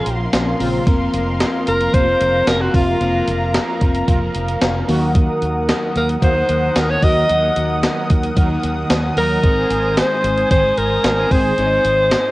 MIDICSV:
0, 0, Header, 1, 8, 480
1, 0, Start_track
1, 0, Tempo, 535714
1, 777, Time_signature, 4, 2, 24, 8
1, 11032, End_track
2, 0, Start_track
2, 0, Title_t, "Analog synth pad"
2, 0, Program_c, 0, 89
2, 0, Note_on_c, 0, 70, 72
2, 0, Note_on_c, 0, 77, 63
2, 0, Note_on_c, 0, 84, 85
2, 741, Note_off_c, 0, 77, 0
2, 784, Note_on_c, 0, 77, 65
2, 2661, Note_off_c, 0, 84, 0
2, 2702, Note_on_c, 0, 82, 76
2, 4345, Note_off_c, 0, 77, 0
2, 4362, Note_off_c, 0, 82, 0
2, 4374, Note_on_c, 0, 78, 71
2, 4374, Note_on_c, 0, 87, 85
2, 8420, Note_off_c, 0, 78, 0
2, 8421, Note_off_c, 0, 70, 0
2, 8455, Note_on_c, 0, 72, 72
2, 8455, Note_on_c, 0, 80, 68
2, 11032, Note_off_c, 0, 72, 0
2, 11032, Note_off_c, 0, 80, 0
2, 11032, Note_off_c, 0, 87, 0
2, 11032, End_track
3, 0, Start_track
3, 0, Title_t, "Alto saxophone"
3, 0, Program_c, 1, 65
3, 0, Note_on_c, 1, 70, 93
3, 262, Note_off_c, 1, 70, 0
3, 1507, Note_on_c, 1, 70, 107
3, 1739, Note_on_c, 1, 72, 125
3, 1752, Note_off_c, 1, 70, 0
3, 2221, Note_on_c, 1, 70, 105
3, 2235, Note_off_c, 1, 72, 0
3, 2339, Note_on_c, 1, 66, 89
3, 2352, Note_off_c, 1, 70, 0
3, 2463, Note_on_c, 1, 65, 97
3, 2476, Note_off_c, 1, 66, 0
3, 3180, Note_off_c, 1, 65, 0
3, 5349, Note_on_c, 1, 70, 80
3, 5454, Note_off_c, 1, 70, 0
3, 5587, Note_on_c, 1, 72, 100
3, 6066, Note_on_c, 1, 70, 92
3, 6080, Note_off_c, 1, 72, 0
3, 6186, Note_on_c, 1, 73, 96
3, 6200, Note_off_c, 1, 70, 0
3, 6301, Note_on_c, 1, 75, 115
3, 6314, Note_off_c, 1, 73, 0
3, 7019, Note_off_c, 1, 75, 0
3, 8224, Note_on_c, 1, 70, 118
3, 8946, Note_on_c, 1, 72, 110
3, 8960, Note_off_c, 1, 70, 0
3, 9413, Note_off_c, 1, 72, 0
3, 9419, Note_on_c, 1, 72, 121
3, 9660, Note_on_c, 1, 70, 105
3, 9674, Note_off_c, 1, 72, 0
3, 10140, Note_on_c, 1, 72, 113
3, 10154, Note_off_c, 1, 70, 0
3, 11032, Note_off_c, 1, 72, 0
3, 11032, End_track
4, 0, Start_track
4, 0, Title_t, "FM electric piano"
4, 0, Program_c, 2, 5
4, 0, Control_c, 2, 64, 127
4, 0, Note_on_c, 2, 58, 67
4, 0, Note_on_c, 2, 61, 61
4, 0, Note_on_c, 2, 65, 58
4, 0, Note_on_c, 2, 72, 58
4, 0, Note_on_c, 2, 73, 69
4, 262, Note_off_c, 2, 58, 0
4, 265, Note_off_c, 2, 72, 0
4, 267, Note_off_c, 2, 61, 0
4, 270, Note_off_c, 2, 65, 0
4, 273, Note_off_c, 2, 73, 0
4, 291, Note_on_c, 2, 58, 59
4, 295, Note_on_c, 2, 60, 53
4, 296, Note_on_c, 2, 61, 55
4, 300, Note_on_c, 2, 65, 54
4, 302, Note_on_c, 2, 70, 64
4, 761, Note_off_c, 2, 58, 0
4, 765, Note_off_c, 2, 60, 0
4, 766, Note_on_c, 2, 53, 77
4, 771, Note_off_c, 2, 65, 0
4, 771, Note_on_c, 2, 58, 70
4, 776, Note_off_c, 2, 61, 0
4, 776, Note_on_c, 2, 60, 71
4, 777, Note_off_c, 2, 70, 0
4, 782, Note_on_c, 2, 65, 74
4, 788, Note_on_c, 2, 70, 88
4, 790, Control_c, 2, 64, 0
4, 968, Control_c, 2, 64, 127
4, 2656, Note_off_c, 2, 53, 0
4, 2658, Note_off_c, 2, 58, 0
4, 2660, Note_off_c, 2, 60, 0
4, 2663, Note_off_c, 2, 65, 0
4, 2666, Note_off_c, 2, 70, 0
4, 2688, Note_on_c, 2, 53, 66
4, 2693, Note_on_c, 2, 58, 59
4, 2698, Note_on_c, 2, 60, 61
4, 2704, Note_on_c, 2, 65, 60
4, 2709, Note_on_c, 2, 70, 72
4, 4338, Note_off_c, 2, 53, 0
4, 4341, Note_off_c, 2, 58, 0
4, 4344, Note_off_c, 2, 60, 0
4, 4347, Note_off_c, 2, 65, 0
4, 4349, Note_off_c, 2, 70, 0
4, 4366, Note_on_c, 2, 54, 76
4, 4371, Note_on_c, 2, 58, 71
4, 4377, Note_on_c, 2, 63, 73
4, 4383, Note_on_c, 2, 66, 76
4, 4387, Control_c, 2, 64, 0
4, 4387, Note_on_c, 2, 70, 83
4, 4542, Control_c, 2, 64, 127
4, 6256, Note_off_c, 2, 54, 0
4, 6258, Note_off_c, 2, 58, 0
4, 6261, Note_off_c, 2, 63, 0
4, 6264, Note_off_c, 2, 66, 0
4, 6266, Note_off_c, 2, 70, 0
4, 6287, Note_on_c, 2, 54, 71
4, 6291, Note_on_c, 2, 58, 59
4, 6296, Note_on_c, 2, 63, 62
4, 6302, Note_on_c, 2, 66, 61
4, 6307, Note_on_c, 2, 70, 75
4, 8176, Note_off_c, 2, 54, 0
4, 8178, Note_off_c, 2, 58, 0
4, 8181, Note_off_c, 2, 63, 0
4, 8183, Note_off_c, 2, 66, 0
4, 8186, Note_off_c, 2, 70, 0
4, 8448, Note_on_c, 2, 56, 67
4, 8452, Note_on_c, 2, 60, 64
4, 8459, Note_on_c, 2, 63, 64
4, 8464, Note_on_c, 2, 68, 62
4, 8468, Control_c, 2, 64, 0
4, 8469, Note_on_c, 2, 72, 70
4, 8627, Control_c, 2, 64, 127
4, 10336, Note_off_c, 2, 56, 0
4, 10338, Note_off_c, 2, 60, 0
4, 10342, Note_off_c, 2, 63, 0
4, 10344, Note_off_c, 2, 68, 0
4, 10347, Note_off_c, 2, 72, 0
4, 10371, Note_on_c, 2, 56, 63
4, 10376, Note_on_c, 2, 60, 62
4, 10381, Note_on_c, 2, 63, 58
4, 10386, Note_on_c, 2, 68, 61
4, 10392, Note_on_c, 2, 73, 58
4, 10442, Note_off_c, 2, 73, 0
4, 10450, Note_on_c, 2, 75, 74
4, 11032, Note_off_c, 2, 56, 0
4, 11032, Note_off_c, 2, 60, 0
4, 11032, Note_off_c, 2, 63, 0
4, 11032, Note_off_c, 2, 68, 0
4, 11032, Note_off_c, 2, 75, 0
4, 11032, End_track
5, 0, Start_track
5, 0, Title_t, "Analog polysynth"
5, 0, Program_c, 3, 90
5, 537, Note_on_c, 3, 49, 102
5, 537, Note_on_c, 3, 60, 105
5, 537, Note_on_c, 3, 65, 111
5, 741, Note_off_c, 3, 49, 0
5, 741, Note_off_c, 3, 60, 0
5, 741, Note_off_c, 3, 65, 0
5, 1738, Note_on_c, 3, 48, 91
5, 1738, Note_on_c, 3, 58, 86
5, 1738, Note_on_c, 3, 65, 95
5, 1839, Note_off_c, 3, 58, 0
5, 1839, Note_off_c, 3, 65, 0
5, 1840, Note_off_c, 3, 48, 0
5, 2455, Note_on_c, 3, 65, 114
5, 2456, Note_on_c, 3, 48, 105
5, 2456, Note_on_c, 3, 58, 101
5, 2660, Note_off_c, 3, 48, 0
5, 2660, Note_off_c, 3, 58, 0
5, 2660, Note_off_c, 3, 65, 0
5, 3656, Note_on_c, 3, 48, 86
5, 3656, Note_on_c, 3, 58, 88
5, 3656, Note_on_c, 3, 65, 92
5, 3758, Note_off_c, 3, 48, 0
5, 3758, Note_off_c, 3, 58, 0
5, 3758, Note_off_c, 3, 65, 0
5, 4377, Note_on_c, 3, 51, 101
5, 4377, Note_on_c, 3, 58, 102
5, 4377, Note_on_c, 3, 66, 113
5, 4581, Note_off_c, 3, 51, 0
5, 4581, Note_off_c, 3, 58, 0
5, 4581, Note_off_c, 3, 66, 0
5, 5575, Note_on_c, 3, 51, 89
5, 5576, Note_on_c, 3, 58, 90
5, 5576, Note_on_c, 3, 66, 96
5, 5678, Note_off_c, 3, 51, 0
5, 5678, Note_off_c, 3, 58, 0
5, 5678, Note_off_c, 3, 66, 0
5, 6295, Note_on_c, 3, 63, 99
5, 6295, Note_on_c, 3, 70, 110
5, 6296, Note_on_c, 3, 54, 107
5, 6500, Note_off_c, 3, 54, 0
5, 6500, Note_off_c, 3, 63, 0
5, 6500, Note_off_c, 3, 70, 0
5, 7496, Note_on_c, 3, 54, 82
5, 7496, Note_on_c, 3, 63, 87
5, 7496, Note_on_c, 3, 70, 93
5, 7598, Note_off_c, 3, 70, 0
5, 7599, Note_off_c, 3, 54, 0
5, 7599, Note_off_c, 3, 63, 0
5, 8217, Note_on_c, 3, 54, 104
5, 8217, Note_on_c, 3, 63, 105
5, 8217, Note_on_c, 3, 70, 115
5, 8421, Note_off_c, 3, 54, 0
5, 8421, Note_off_c, 3, 63, 0
5, 8421, Note_off_c, 3, 70, 0
5, 9417, Note_on_c, 3, 51, 89
5, 9417, Note_on_c, 3, 60, 87
5, 9417, Note_on_c, 3, 68, 96
5, 9519, Note_off_c, 3, 51, 0
5, 9519, Note_off_c, 3, 60, 0
5, 9519, Note_off_c, 3, 68, 0
5, 10137, Note_on_c, 3, 51, 96
5, 10137, Note_on_c, 3, 60, 100
5, 10137, Note_on_c, 3, 68, 113
5, 10341, Note_off_c, 3, 51, 0
5, 10341, Note_off_c, 3, 60, 0
5, 10341, Note_off_c, 3, 68, 0
5, 11032, End_track
6, 0, Start_track
6, 0, Title_t, "Overdriven electric guitar"
6, 0, Program_c, 4, 29
6, 0, Note_on_c, 4, 46, 83
6, 0, Note_on_c, 4, 53, 90
6, 0, Note_on_c, 4, 58, 95
6, 758, Note_off_c, 4, 53, 0
6, 761, Note_on_c, 4, 53, 95
6, 768, Note_off_c, 4, 46, 0
6, 783, Note_off_c, 4, 58, 0
6, 786, Note_on_c, 4, 60, 99
6, 808, Note_on_c, 4, 65, 105
6, 1708, Note_off_c, 4, 53, 0
6, 1719, Note_on_c, 4, 53, 88
6, 1734, Note_off_c, 4, 60, 0
6, 1745, Note_on_c, 4, 60, 90
6, 1752, Note_off_c, 4, 65, 0
6, 1767, Note_on_c, 4, 65, 92
6, 2680, Note_off_c, 4, 53, 0
6, 2691, Note_on_c, 4, 53, 79
6, 2692, Note_off_c, 4, 60, 0
6, 2700, Note_off_c, 4, 65, 0
6, 2703, Note_on_c, 4, 60, 92
6, 2711, Note_on_c, 4, 65, 87
6, 3157, Note_off_c, 4, 53, 0
6, 3168, Note_on_c, 4, 53, 65
6, 3174, Note_off_c, 4, 60, 0
6, 3184, Note_off_c, 4, 65, 0
6, 3185, Note_on_c, 4, 60, 63
6, 3198, Note_on_c, 4, 65, 74
6, 3396, Note_off_c, 4, 65, 0
6, 3407, Note_on_c, 4, 65, 59
6, 3412, Note_off_c, 4, 53, 0
6, 3421, Note_off_c, 4, 60, 0
6, 3438, Note_on_c, 4, 60, 44
6, 3650, Note_on_c, 4, 53, 97
6, 3651, Note_off_c, 4, 60, 0
6, 3652, Note_off_c, 4, 65, 0
6, 3661, Note_on_c, 4, 60, 95
6, 3672, Note_on_c, 4, 65, 101
6, 4367, Note_off_c, 4, 60, 0
6, 4371, Note_on_c, 4, 63, 79
6, 4373, Note_off_c, 4, 53, 0
6, 4381, Note_on_c, 4, 58, 65
6, 4384, Note_off_c, 4, 65, 0
6, 4392, Note_on_c, 4, 51, 63
6, 5080, Note_off_c, 4, 51, 0
6, 5084, Note_on_c, 4, 51, 62
6, 5091, Note_off_c, 4, 58, 0
6, 5101, Note_on_c, 4, 58, 70
6, 5112, Note_off_c, 4, 63, 0
6, 5115, Note_on_c, 4, 63, 71
6, 5556, Note_off_c, 4, 51, 0
6, 5560, Note_on_c, 4, 51, 83
6, 5577, Note_off_c, 4, 58, 0
6, 5588, Note_on_c, 4, 58, 87
6, 5604, Note_off_c, 4, 63, 0
6, 5607, Note_on_c, 4, 63, 99
6, 6517, Note_off_c, 4, 51, 0
6, 6521, Note_on_c, 4, 51, 83
6, 6536, Note_off_c, 4, 58, 0
6, 6547, Note_on_c, 4, 58, 79
6, 6564, Note_off_c, 4, 63, 0
6, 6568, Note_on_c, 4, 63, 93
6, 7481, Note_off_c, 4, 51, 0
6, 7485, Note_on_c, 4, 51, 89
6, 7500, Note_off_c, 4, 58, 0
6, 7510, Note_on_c, 4, 58, 95
6, 7528, Note_off_c, 4, 63, 0
6, 7531, Note_on_c, 4, 63, 95
6, 8439, Note_off_c, 4, 58, 0
6, 8442, Note_on_c, 4, 56, 76
6, 8465, Note_off_c, 4, 63, 0
6, 8469, Note_on_c, 4, 63, 86
6, 8491, Note_on_c, 4, 68, 91
6, 9390, Note_off_c, 4, 56, 0
6, 9401, Note_on_c, 4, 56, 83
6, 9424, Note_off_c, 4, 63, 0
6, 9427, Note_on_c, 4, 63, 89
6, 9434, Note_off_c, 4, 68, 0
6, 9449, Note_on_c, 4, 68, 86
6, 10350, Note_off_c, 4, 56, 0
6, 10360, Note_on_c, 4, 56, 78
6, 10383, Note_off_c, 4, 63, 0
6, 10387, Note_on_c, 4, 63, 88
6, 10393, Note_off_c, 4, 68, 0
6, 10409, Note_on_c, 4, 68, 94
6, 10621, Note_off_c, 4, 51, 0
6, 11032, Note_off_c, 4, 56, 0
6, 11032, Note_off_c, 4, 63, 0
6, 11032, Note_off_c, 4, 68, 0
6, 11032, End_track
7, 0, Start_track
7, 0, Title_t, "Fretless electric bass"
7, 0, Program_c, 5, 35
7, 56, Note_on_c, 5, 34, 109
7, 229, Note_off_c, 5, 34, 0
7, 297, Note_on_c, 5, 34, 111
7, 469, Note_off_c, 5, 34, 0
7, 535, Note_on_c, 5, 34, 98
7, 708, Note_off_c, 5, 34, 0
7, 778, Note_on_c, 5, 29, 106
7, 950, Note_off_c, 5, 29, 0
7, 1016, Note_on_c, 5, 29, 116
7, 1275, Note_off_c, 5, 29, 0
7, 1499, Note_on_c, 5, 29, 97
7, 1671, Note_off_c, 5, 29, 0
7, 1736, Note_on_c, 5, 29, 100
7, 1909, Note_off_c, 5, 29, 0
7, 1980, Note_on_c, 5, 29, 108
7, 2152, Note_off_c, 5, 29, 0
7, 2214, Note_on_c, 5, 29, 108
7, 2388, Note_off_c, 5, 29, 0
7, 2456, Note_on_c, 5, 29, 97
7, 2629, Note_off_c, 5, 29, 0
7, 2693, Note_on_c, 5, 29, 108
7, 2867, Note_off_c, 5, 29, 0
7, 2934, Note_on_c, 5, 29, 106
7, 3194, Note_off_c, 5, 29, 0
7, 3417, Note_on_c, 5, 29, 100
7, 3590, Note_off_c, 5, 29, 0
7, 3655, Note_on_c, 5, 29, 106
7, 3828, Note_off_c, 5, 29, 0
7, 3898, Note_on_c, 5, 29, 104
7, 4070, Note_off_c, 5, 29, 0
7, 4136, Note_on_c, 5, 29, 100
7, 4309, Note_off_c, 5, 29, 0
7, 4374, Note_on_c, 5, 39, 100
7, 4721, Note_off_c, 5, 39, 0
7, 4856, Note_on_c, 5, 39, 96
7, 5116, Note_off_c, 5, 39, 0
7, 5335, Note_on_c, 5, 39, 101
7, 5508, Note_off_c, 5, 39, 0
7, 5575, Note_on_c, 5, 39, 105
7, 5748, Note_off_c, 5, 39, 0
7, 5814, Note_on_c, 5, 39, 95
7, 5987, Note_off_c, 5, 39, 0
7, 6054, Note_on_c, 5, 39, 99
7, 6228, Note_off_c, 5, 39, 0
7, 6295, Note_on_c, 5, 39, 94
7, 6468, Note_off_c, 5, 39, 0
7, 6537, Note_on_c, 5, 39, 102
7, 6710, Note_off_c, 5, 39, 0
7, 6776, Note_on_c, 5, 39, 104
7, 7035, Note_off_c, 5, 39, 0
7, 7257, Note_on_c, 5, 39, 100
7, 7430, Note_off_c, 5, 39, 0
7, 7496, Note_on_c, 5, 39, 97
7, 7669, Note_off_c, 5, 39, 0
7, 7737, Note_on_c, 5, 39, 106
7, 7910, Note_off_c, 5, 39, 0
7, 7974, Note_on_c, 5, 39, 108
7, 8148, Note_off_c, 5, 39, 0
7, 8213, Note_on_c, 5, 39, 99
7, 8387, Note_off_c, 5, 39, 0
7, 8457, Note_on_c, 5, 32, 116
7, 8630, Note_off_c, 5, 32, 0
7, 8694, Note_on_c, 5, 32, 105
7, 8954, Note_off_c, 5, 32, 0
7, 9173, Note_on_c, 5, 32, 107
7, 9347, Note_off_c, 5, 32, 0
7, 9416, Note_on_c, 5, 32, 104
7, 9589, Note_off_c, 5, 32, 0
7, 9654, Note_on_c, 5, 32, 94
7, 9828, Note_off_c, 5, 32, 0
7, 9894, Note_on_c, 5, 32, 113
7, 10068, Note_off_c, 5, 32, 0
7, 10137, Note_on_c, 5, 32, 103
7, 10309, Note_off_c, 5, 32, 0
7, 10374, Note_on_c, 5, 32, 100
7, 10548, Note_off_c, 5, 32, 0
7, 10614, Note_on_c, 5, 32, 107
7, 10874, Note_off_c, 5, 32, 0
7, 11032, End_track
8, 0, Start_track
8, 0, Title_t, "Drums"
8, 55, Note_on_c, 9, 42, 75
8, 144, Note_off_c, 9, 42, 0
8, 296, Note_on_c, 9, 42, 98
8, 296, Note_on_c, 9, 54, 63
8, 297, Note_on_c, 9, 38, 116
8, 385, Note_off_c, 9, 42, 0
8, 386, Note_off_c, 9, 54, 0
8, 387, Note_off_c, 9, 38, 0
8, 541, Note_on_c, 9, 46, 78
8, 630, Note_off_c, 9, 46, 0
8, 777, Note_on_c, 9, 36, 126
8, 777, Note_on_c, 9, 42, 81
8, 866, Note_off_c, 9, 36, 0
8, 866, Note_off_c, 9, 42, 0
8, 1017, Note_on_c, 9, 42, 77
8, 1106, Note_off_c, 9, 42, 0
8, 1254, Note_on_c, 9, 42, 78
8, 1255, Note_on_c, 9, 54, 67
8, 1256, Note_on_c, 9, 38, 115
8, 1344, Note_off_c, 9, 42, 0
8, 1344, Note_off_c, 9, 54, 0
8, 1346, Note_off_c, 9, 38, 0
8, 1495, Note_on_c, 9, 42, 79
8, 1585, Note_off_c, 9, 42, 0
8, 1617, Note_on_c, 9, 42, 52
8, 1707, Note_off_c, 9, 42, 0
8, 1736, Note_on_c, 9, 36, 100
8, 1739, Note_on_c, 9, 42, 98
8, 1826, Note_off_c, 9, 36, 0
8, 1829, Note_off_c, 9, 42, 0
8, 1976, Note_on_c, 9, 42, 76
8, 2066, Note_off_c, 9, 42, 0
8, 2215, Note_on_c, 9, 42, 100
8, 2216, Note_on_c, 9, 54, 62
8, 2217, Note_on_c, 9, 38, 113
8, 2305, Note_off_c, 9, 42, 0
8, 2305, Note_off_c, 9, 54, 0
8, 2306, Note_off_c, 9, 38, 0
8, 2456, Note_on_c, 9, 36, 97
8, 2460, Note_on_c, 9, 46, 79
8, 2545, Note_off_c, 9, 36, 0
8, 2549, Note_off_c, 9, 46, 0
8, 2695, Note_on_c, 9, 42, 77
8, 2785, Note_off_c, 9, 42, 0
8, 2935, Note_on_c, 9, 42, 78
8, 3024, Note_off_c, 9, 42, 0
8, 3173, Note_on_c, 9, 42, 84
8, 3174, Note_on_c, 9, 54, 63
8, 3175, Note_on_c, 9, 38, 112
8, 3263, Note_off_c, 9, 42, 0
8, 3263, Note_off_c, 9, 54, 0
8, 3264, Note_off_c, 9, 38, 0
8, 3413, Note_on_c, 9, 42, 82
8, 3417, Note_on_c, 9, 36, 95
8, 3503, Note_off_c, 9, 42, 0
8, 3506, Note_off_c, 9, 36, 0
8, 3535, Note_on_c, 9, 42, 51
8, 3624, Note_off_c, 9, 42, 0
8, 3654, Note_on_c, 9, 36, 100
8, 3655, Note_on_c, 9, 42, 89
8, 3744, Note_off_c, 9, 36, 0
8, 3745, Note_off_c, 9, 42, 0
8, 3893, Note_on_c, 9, 42, 75
8, 3983, Note_off_c, 9, 42, 0
8, 4017, Note_on_c, 9, 42, 57
8, 4106, Note_off_c, 9, 42, 0
8, 4134, Note_on_c, 9, 42, 106
8, 4135, Note_on_c, 9, 38, 119
8, 4135, Note_on_c, 9, 54, 62
8, 4223, Note_off_c, 9, 42, 0
8, 4224, Note_off_c, 9, 54, 0
8, 4225, Note_off_c, 9, 38, 0
8, 4378, Note_on_c, 9, 46, 76
8, 4468, Note_off_c, 9, 46, 0
8, 4614, Note_on_c, 9, 42, 79
8, 4615, Note_on_c, 9, 36, 119
8, 4704, Note_off_c, 9, 42, 0
8, 4705, Note_off_c, 9, 36, 0
8, 4855, Note_on_c, 9, 42, 79
8, 4945, Note_off_c, 9, 42, 0
8, 5095, Note_on_c, 9, 42, 83
8, 5095, Note_on_c, 9, 54, 67
8, 5097, Note_on_c, 9, 38, 109
8, 5184, Note_off_c, 9, 42, 0
8, 5185, Note_off_c, 9, 54, 0
8, 5186, Note_off_c, 9, 38, 0
8, 5335, Note_on_c, 9, 42, 78
8, 5425, Note_off_c, 9, 42, 0
8, 5457, Note_on_c, 9, 42, 53
8, 5547, Note_off_c, 9, 42, 0
8, 5574, Note_on_c, 9, 36, 97
8, 5576, Note_on_c, 9, 42, 96
8, 5664, Note_off_c, 9, 36, 0
8, 5666, Note_off_c, 9, 42, 0
8, 5814, Note_on_c, 9, 42, 74
8, 5904, Note_off_c, 9, 42, 0
8, 6054, Note_on_c, 9, 42, 104
8, 6055, Note_on_c, 9, 54, 64
8, 6056, Note_on_c, 9, 38, 114
8, 6144, Note_off_c, 9, 42, 0
8, 6145, Note_off_c, 9, 38, 0
8, 6145, Note_off_c, 9, 54, 0
8, 6295, Note_on_c, 9, 36, 101
8, 6297, Note_on_c, 9, 46, 79
8, 6384, Note_off_c, 9, 36, 0
8, 6387, Note_off_c, 9, 46, 0
8, 6535, Note_on_c, 9, 42, 84
8, 6625, Note_off_c, 9, 42, 0
8, 6775, Note_on_c, 9, 42, 76
8, 6864, Note_off_c, 9, 42, 0
8, 7015, Note_on_c, 9, 42, 83
8, 7016, Note_on_c, 9, 54, 68
8, 7017, Note_on_c, 9, 38, 116
8, 7104, Note_off_c, 9, 42, 0
8, 7105, Note_off_c, 9, 54, 0
8, 7106, Note_off_c, 9, 38, 0
8, 7255, Note_on_c, 9, 42, 76
8, 7258, Note_on_c, 9, 36, 95
8, 7345, Note_off_c, 9, 42, 0
8, 7348, Note_off_c, 9, 36, 0
8, 7376, Note_on_c, 9, 42, 55
8, 7466, Note_off_c, 9, 42, 0
8, 7496, Note_on_c, 9, 36, 98
8, 7497, Note_on_c, 9, 42, 93
8, 7585, Note_off_c, 9, 36, 0
8, 7587, Note_off_c, 9, 42, 0
8, 7737, Note_on_c, 9, 42, 74
8, 7826, Note_off_c, 9, 42, 0
8, 7975, Note_on_c, 9, 42, 106
8, 7976, Note_on_c, 9, 54, 63
8, 7977, Note_on_c, 9, 38, 108
8, 8065, Note_off_c, 9, 42, 0
8, 8066, Note_off_c, 9, 54, 0
8, 8067, Note_off_c, 9, 38, 0
8, 8218, Note_on_c, 9, 46, 81
8, 8308, Note_off_c, 9, 46, 0
8, 8456, Note_on_c, 9, 42, 80
8, 8457, Note_on_c, 9, 36, 126
8, 8546, Note_off_c, 9, 36, 0
8, 8546, Note_off_c, 9, 42, 0
8, 8697, Note_on_c, 9, 42, 80
8, 8787, Note_off_c, 9, 42, 0
8, 8935, Note_on_c, 9, 42, 87
8, 8936, Note_on_c, 9, 54, 71
8, 8937, Note_on_c, 9, 38, 113
8, 9025, Note_off_c, 9, 42, 0
8, 9026, Note_off_c, 9, 54, 0
8, 9027, Note_off_c, 9, 38, 0
8, 9177, Note_on_c, 9, 42, 80
8, 9267, Note_off_c, 9, 42, 0
8, 9296, Note_on_c, 9, 42, 53
8, 9386, Note_off_c, 9, 42, 0
8, 9416, Note_on_c, 9, 36, 103
8, 9416, Note_on_c, 9, 42, 93
8, 9506, Note_off_c, 9, 36, 0
8, 9506, Note_off_c, 9, 42, 0
8, 9656, Note_on_c, 9, 42, 76
8, 9745, Note_off_c, 9, 42, 0
8, 9895, Note_on_c, 9, 42, 102
8, 9896, Note_on_c, 9, 54, 64
8, 9897, Note_on_c, 9, 38, 112
8, 9984, Note_off_c, 9, 42, 0
8, 9985, Note_off_c, 9, 54, 0
8, 9986, Note_off_c, 9, 38, 0
8, 10136, Note_on_c, 9, 36, 97
8, 10138, Note_on_c, 9, 46, 80
8, 10226, Note_off_c, 9, 36, 0
8, 10228, Note_off_c, 9, 46, 0
8, 10376, Note_on_c, 9, 42, 77
8, 10465, Note_off_c, 9, 42, 0
8, 10616, Note_on_c, 9, 42, 76
8, 10705, Note_off_c, 9, 42, 0
8, 10854, Note_on_c, 9, 42, 86
8, 10854, Note_on_c, 9, 54, 70
8, 10856, Note_on_c, 9, 38, 115
8, 10943, Note_off_c, 9, 42, 0
8, 10944, Note_off_c, 9, 54, 0
8, 10945, Note_off_c, 9, 38, 0
8, 11032, End_track
0, 0, End_of_file